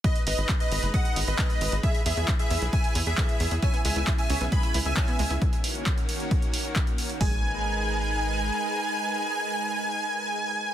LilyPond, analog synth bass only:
\new Staff \with { instrumentName = "Analog synth bass" } { \clef bass \time 4/4 \key gis \minor \tempo 4 = 134 r8 gis,,16 gis,,16 r8 gis,,16 fis,,16 r8 gis,,16 gis,,16 r8 gis,,16 gis,,16 | r8 e,16 e,16 r8 e,16 b,,16 r8 e,16 e,16 r8 e,16 e,16 | r8 cis,16 cis,16 r8 cis,16 b,,16 r8 cis,16 cis,16 r8 cis,16 cis,16 | r1 |
gis,,2. r4 | r1 | }